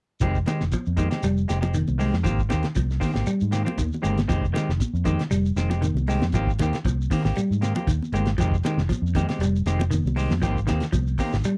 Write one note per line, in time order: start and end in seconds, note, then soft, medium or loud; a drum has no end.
0.20 0.43 F1 medium
0.20 0.37 D#3 medium
0.20 0.41 F3 medium
0.20 0.37 G#3 medium
0.20 0.37 C4 medium
0.20 0.38 G4 medium
0.20 kick medium
0.20 closed hi-hat medium
0.20 shekere medium
0.35 kick medium
0.35 shekere soft
0.46 0.62 D#3 medium
0.46 0.66 D#3 medium
0.46 0.63 G#3 medium
0.46 0.63 C4 medium
0.46 0.63 G4 medium
0.46 snare medium
0.46 closed hi-hat soft
0.46 high conga medium
0.46 shekere medium
0.61 0.71 F1 medium
0.61 snare medium
0.61 shekere soft
0.72 0.92 F3 medium
0.72 kick medium
0.72 closed hi-hat medium
0.72 high conga medium
0.72 shekere medium
0.86 1.08 F2 medium
0.86 shekere soft
0.97 1.11 D#3 medium
0.97 1.17 D#3 medium
0.97 1.10 G#3 medium
0.97 1.10 C4 medium
0.97 1.09 G4 medium
0.97 kick medium
0.97 closed hi-hat medium
0.97 high conga medium
0.97 shekere soft
1.11 1.26 G#3 soft
1.11 1.26 C4 soft
1.11 1.25 G4 soft
1.11 snare medium
1.11 closed hi-hat soft
1.11 shekere soft
1.23 1.45 F1 medium
1.23 1.43 G3 medium
1.23 closed hi-hat medium
1.23 shekere medium
1.37 shekere soft
1.48 1.82 F1 medium
1.48 1.61 G#3 soft
1.48 1.61 C4 medium
1.48 1.60 G4 medium
1.48 snare medium
1.48 closed hi-hat soft
1.48 shekere medium
1.61 1.71 F3 medium
1.61 1.77 G#3 soft
1.61 1.76 C4 soft
1.61 1.76 G4 soft
1.61 closed hi-hat soft
1.61 high conga medium
1.61 shekere soft
1.74 1.93 D#3 medium
1.74 closed hi-hat medium
1.74 high conga medium
1.74 shekere medium
1.87 2.10 C2 medium
1.87 high conga medium
1.87 shekere soft
1.98 2.15 D#3 medium
1.98 2.15 G#3 medium
1.98 2.19 G#3 medium
1.98 2.15 C4 medium
1.98 2.15 G4 medium
1.98 open hi-hat soft
1.98 shekere medium
2.13 2.23 F2 medium
2.13 snare medium
2.13 shekere soft
2.23 2.53 G#1 medium
2.23 2.40 D#3 medium
2.23 2.44 F3 medium
2.23 2.40 A#3 medium
2.23 2.40 C4 medium
2.23 2.40 G4 medium
2.23 kick medium
2.23 closed hi-hat medium
2.23 shekere medium
2.39 kick medium
2.39 shekere soft
2.49 2.62 D#2 medium
2.49 2.66 D#3 medium
2.49 2.69 D#3 medium
2.49 2.66 A#3 medium
2.49 2.66 C4 medium
2.49 2.66 G4 medium
2.49 snare medium
2.49 closed hi-hat soft
2.49 high conga medium
2.49 shekere medium
2.63 snare medium
2.63 closed hi-hat soft
2.63 shekere soft
2.75 2.98 C2 medium
2.75 2.95 F3 medium
2.75 kick medium
2.75 closed hi-hat medium
2.75 high conga medium
2.75 shekere medium
2.90 snare soft
2.90 shekere soft
3.00 3.15 D#3 medium
3.00 3.20 D#3 medium
3.00 3.13 A#3 medium
3.00 3.13 C4 medium
3.00 3.12 G4 medium
3.00 kick medium
3.00 open hi-hat medium
3.00 high conga medium
3.00 shekere medium
3.14 3.25 G#1 medium
3.14 3.30 A#3 soft
3.14 3.29 C4 soft
3.14 3.29 G4 soft
3.14 snare medium
3.14 shekere soft
3.26 3.46 G3 medium
3.26 muted fingered electric bass stroke soft
3.26 closed hi-hat medium
3.26 shekere medium
3.41 3.63 G#2 medium
3.41 shekere soft
3.51 3.66 D#3 medium
3.51 3.64 A#3 medium
3.51 3.64 C4 medium
3.51 3.64 G4 soft
3.51 snare medium
3.51 closed hi-hat soft
3.51 shekere medium
3.65 3.75 F3 medium
3.65 3.81 A#3 soft
3.65 3.80 C4 soft
3.65 3.80 G4 soft
3.65 closed hi-hat soft
3.65 high conga medium
3.65 shekere soft
3.78 3.89 D#2 medium
3.78 3.97 D#3 medium
3.78 kick medium
3.78 closed hi-hat medium
3.78 high conga medium
3.78 shekere medium
3.93 high conga medium
3.93 shekere soft
4.02 4.25 G1 medium
4.02 4.19 D#3 medium
4.02 4.22 G#3 medium
4.02 4.19 A#3 medium
4.02 4.19 C4 medium
4.02 4.20 G4 medium
4.02 closed hi-hat soft
4.02 shekere medium
4.18 snare medium
4.18 closed hi-hat soft
4.18 high conga medium
4.18 shekere soft
4.28 4.51 F1 medium
4.28 4.45 D#3 medium
4.28 4.48 F3 medium
4.28 4.45 G#3 medium
4.28 4.45 C4 medium
4.28 4.45 G4 medium
4.28 kick medium
4.28 closed hi-hat medium
4.28 shekere medium
4.43 kick medium
4.43 shekere soft
4.53 4.70 D#3 medium
4.53 4.73 D#3 medium
4.53 4.70 G#3 medium
4.53 4.71 C4 medium
4.53 4.71 G4 medium
4.53 snare medium
4.53 closed hi-hat soft
4.53 high conga medium
4.53 shekere medium
4.69 4.79 F1 medium
4.69 snare medium
4.69 shekere soft
4.80 kick medium
4.80 closed hi-hat medium
4.80 high conga medium
4.80 shekere medium
4.94 5.15 F2 medium
4.94 shekere soft
5.04 5.21 D#3 medium
5.04 5.25 D#3 medium
5.04 5.22 G#3 medium
5.04 5.22 C4 medium
5.04 5.22 G4 medium
5.04 kick medium
5.04 closed hi-hat medium
5.04 high conga medium
5.04 shekere medium
5.19 snare medium
5.19 closed hi-hat soft
5.19 shekere soft
5.31 5.53 F1 medium
5.31 5.50 G3 medium
5.31 closed hi-hat medium
5.31 shekere medium
5.46 shekere soft
5.56 5.90 F1 medium
5.56 5.71 D#3 medium
5.56 5.71 G#3 medium
5.56 5.70 C4 medium
5.56 muted clean electric guitar stroke medium
5.56 snare medium
5.56 closed hi-hat soft
5.56 shekere medium
5.70 5.79 F3 medium
5.70 5.86 G#3 soft
5.70 5.86 C4 soft
5.70 5.85 G4 soft
5.70 snare soft
5.70 closed hi-hat soft
5.70 high conga medium
5.70 shekere soft
5.82 6.01 D#3 medium
5.82 closed hi-hat medium
5.82 high conga medium
5.82 shekere medium
5.94 6.17 C2 medium
5.94 high conga medium
5.94 shekere soft
6.07 6.24 D#3 medium
6.07 6.27 G#3 medium
6.07 6.25 G#3 medium
6.07 6.25 C4 medium
6.07 6.25 G4 medium
6.07 open hi-hat soft
6.07 shekere medium
6.20 6.31 F2 medium
6.20 snare medium
6.20 high conga medium
6.20 shekere soft
6.32 6.61 G#1 medium
6.32 6.50 D#3 medium
6.32 6.53 F3 medium
6.32 6.50 A#3 medium
6.32 6.51 C4 medium
6.32 6.51 G4 medium
6.32 kick medium
6.32 closed hi-hat medium
6.32 shekere medium
6.47 kick medium
6.47 shekere soft
6.59 6.71 D#2 medium
6.59 6.79 D#3 medium
6.59 6.76 D#3 medium
6.59 6.77 A#3 medium
6.59 6.77 C4 medium
6.59 snare medium
6.59 closed hi-hat medium
6.59 high conga medium
6.59 shekere medium
6.63 6.77 G4 medium
6.73 snare medium
6.73 closed hi-hat medium
6.73 shekere soft
6.85 7.07 C2 medium
6.85 7.04 F3 medium
6.85 kick medium
6.85 closed hi-hat medium
6.85 high conga medium
6.85 shekere medium
7.01 shekere soft
7.11 7.24 D#3 medium
7.11 7.30 D#3 medium
7.11 7.25 A#3 medium
7.11 7.25 C4 medium
7.11 7.24 G4 medium
7.11 kick medium
7.11 open hi-hat medium
7.11 high conga medium
7.11 shekere medium
7.25 7.35 G#1 medium
7.25 7.40 A#3 soft
7.25 7.40 C4 soft
7.25 7.39 G4 soft
7.25 snare medium
7.25 shekere soft
7.36 7.56 G3 medium
7.36 muted fingered electric bass stroke soft
7.36 closed hi-hat medium
7.36 shekere medium
7.51 7.72 G#2 medium
7.51 shekere soft
7.61 7.75 D#3 medium
7.61 7.75 A#3 medium
7.61 7.75 C4 medium
7.61 7.74 G4 medium
7.61 snare medium
7.61 closed hi-hat soft
7.61 shekere medium
7.75 7.85 F3 medium
7.75 7.91 A#3 soft
7.75 7.91 C4 soft
7.75 7.90 G4 soft
7.75 closed hi-hat soft
7.75 high conga medium
7.75 shekere soft
7.87 7.99 D#2 medium
7.87 8.07 D#3 medium
7.87 kick medium
7.87 closed hi-hat medium
7.87 shekere medium
8.02 high conga medium
8.02 shekere soft
8.12 8.34 G1 medium
8.12 8.29 D#3 medium
8.12 8.32 G#3 medium
8.12 8.30 A#3 medium
8.12 8.30 C4 medium
8.12 8.30 G4 medium
8.12 closed hi-hat soft
8.12 shekere medium
8.26 snare medium
8.26 closed hi-hat soft
8.26 shekere soft
8.38 8.60 F1 medium
8.38 8.55 D#3 medium
8.38 8.57 F3 medium
8.38 8.55 G#3 medium
8.38 8.55 C4 medium
8.38 8.56 G4 medium
8.38 kick medium
8.38 closed hi-hat medium
8.38 shekere medium
8.52 kick medium
8.52 shekere soft
8.64 8.80 D#3 medium
8.64 8.84 D#3 medium
8.64 8.81 G#3 medium
8.64 8.81 C4 medium
8.64 8.81 G4 medium
8.64 snare medium
8.64 closed hi-hat soft
8.64 high conga medium
8.64 shekere medium
8.77 8.88 F1 medium
8.77 snare medium
8.77 shekere soft
8.89 9.08 F3 medium
8.89 kick medium
8.89 closed hi-hat medium
8.89 high conga medium
8.89 shekere medium
9.02 9.24 F2 medium
9.07 shekere soft
9.15 9.34 D#3 medium
9.15 9.29 D#3 medium
9.15 9.29 G#3 medium
9.15 9.28 C4 medium
9.15 9.28 G4 medium
9.15 kick medium
9.15 closed hi-hat medium
9.15 high conga medium
9.15 shekere medium
9.29 9.44 G#3 soft
9.29 9.44 C4 soft
9.29 9.43 G4 medium
9.29 snare medium
9.29 closed hi-hat soft
9.29 shekere soft
9.39 9.61 F1 medium
9.39 9.60 G3 medium
9.39 closed hi-hat medium
9.39 shekere medium
9.56 shekere soft
9.66 9.99 F1 medium
9.66 9.82 D#3 medium
9.66 9.83 G#3 medium
9.66 9.83 C4 medium
9.66 9.83 G4 medium
9.66 snare medium
9.66 closed hi-hat soft
9.66 shekere medium
9.79 9.88 F3 medium
9.79 closed hi-hat soft
9.79 high conga medium
9.79 shekere soft
9.91 10.10 D#3 medium
9.91 closed hi-hat medium
9.91 high conga medium
9.91 shekere medium
10.05 10.27 C2 medium
10.05 high conga medium
10.05 shekere soft
10.16 10.33 D#3 medium
10.16 10.33 G#3 medium
10.16 10.33 C4 medium
10.16 10.34 G4 medium
10.16 muted clean electric guitar stroke medium
10.16 open hi-hat medium
10.16 shekere medium
10.30 10.41 F2 medium
10.30 snare medium
10.30 high conga medium
10.30 shekere soft
10.42 10.70 G#1 medium
10.42 10.59 D#3 medium
10.42 10.61 F3 medium
10.42 10.59 A#3 medium
10.42 10.59 C4 medium
10.42 10.59 G4 medium
10.42 kick medium
10.42 closed hi-hat medium
10.42 shekere medium
10.56 kick medium
10.56 shekere soft
10.67 10.80 D#2 medium
10.67 10.86 D#3 medium
10.67 10.84 D#3 medium
10.67 10.84 A#3 medium
10.67 10.84 C4 medium
10.67 10.85 G4 medium
10.67 snare medium
10.67 closed hi-hat soft
10.67 high conga medium
10.67 shekere medium
10.80 snare medium
10.80 closed hi-hat soft
10.80 shekere soft
10.92 11.15 C2 medium
10.92 11.12 F3 medium
10.92 kick medium
10.92 closed hi-hat medium
10.92 high conga medium
10.92 shekere medium
11.07 shekere soft
11.18 11.35 D#3 medium
11.18 11.35 A#3 medium
11.18 11.36 C4 medium
11.18 11.36 G4 medium
11.18 muted clean electric guitar stroke medium
11.18 kick medium
11.18 open hi-hat medium
11.18 high conga medium
11.18 shekere medium
11.32 11.43 G#1 medium
11.32 snare medium
11.32 shekere soft
11.44 11.58 G3 medium
11.44 muted fingered electric bass stroke soft
11.44 closed hi-hat medium
11.44 shekere medium